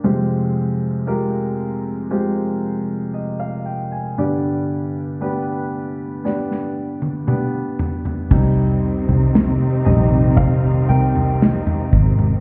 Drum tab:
CC |----------------|----------------|x---------------|
SD |----------------|--------oo------|----o-------o---|
T1 |----------------|-----------o----|----------------|
T2 |----------------|------------o---|----------------|
FT |----------------|--------------oo|o--o--o-o--o-o-o|
BD |----------------|----------------|o-------o-----o-|